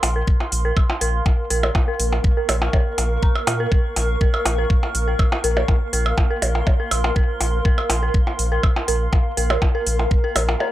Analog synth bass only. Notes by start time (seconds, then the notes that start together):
0.03 A#1
0.52 A#1
1.01 A#1
1.50 A#1
2.00 A#1
2.49 A#1
2.98 A#1
3.47 A#2
3.96 A#1
4.45 A#1
4.95 A#1
5.44 A#1
5.93 A#1
6.42 A#1
6.91 A#1
7.41 A#1
7.90 A#1
8.39 A#1
8.88 A#1
9.37 A#1
9.86 A#1
10.36 A#1